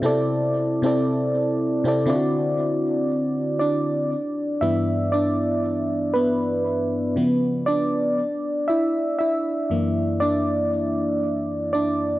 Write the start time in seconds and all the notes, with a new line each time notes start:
0.02 C3 C4 E4 A4
0.06 D5
0.82 C3 C4 E4 A4
0.86 D5
1.84 C3 C4 E4 A4
1.88 D5
2.06 D3 C4 E4 F4
2.10 D5
2.15 F#4
3.59 D4 D5
4.61 G2 E3 B3 E4 E5
5.12 D4 D5
6.13 B3 B4
7.16 C#3 F3 B3
7.66 D4 D5
8.68 E4 E5
9.19 E4 E5
9.70 F#2 E3 A#3
10.20 D4 D5
11.73 D4 D5